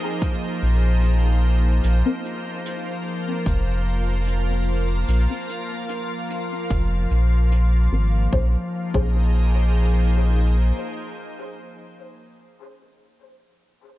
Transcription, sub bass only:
0.62 1.80 A#1 medium
1.84 2.03 A#1 medium
3.46 5.05 F1 medium
5.08 5.27 A#1 medium
6.71 7.06 F1 medium
7.11 7.88 A#1 loud
7.92 8.28 G#1 medium
8.33 8.56 A#1 medium
8.94 10.72 A#1 medium

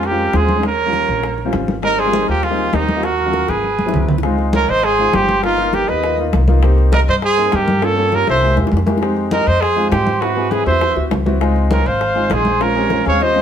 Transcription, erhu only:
0.06 0.36 A#4 medium
0.35 0.64 C5 medium
0.65 1.50 C#5 medium
1.83 2.00 D#5 medium
1.98 2.27 C5 medium
2.28 2.45 A#4 medium
2.43 2.76 G#4 medium
2.74 3.06 G4 medium
3.04 3.51 A#4 medium
3.49 4.09 B4 medium
4.54 4.71 C#5 medium
4.69 4.85 D#5 medium
4.84 5.13 C5 medium
5.13 5.43 C5 medium
5.43 5.73 A#4 medium
5.73 5.89 A#4 medium
5.88 6.18 D#5 medium
6.93 7.00 D#5 medium
7.08 7.15 D#5 medium
7.23 7.55 C5 medium
7.54 7.85 A#4 medium
7.83 8.14 C#5 medium
8.14 8.28 C#5 medium
8.28 8.56 E5 medium
9.32 9.47 D#5 medium
9.47 9.63 D#5 medium
9.62 9.90 C5 medium
9.91 10.23 C5 medium
10.21 10.52 B4 medium
10.52 10.67 B4 medium
10.67 10.95 E5 medium
11.72 11.88 C#5 medium
11.87 12.34 F5 medium
12.32 12.63 C5 medium
12.62 13.06 C#5 medium
13.07 13.24 F5 medium
13.22 13.42 D#5 medium

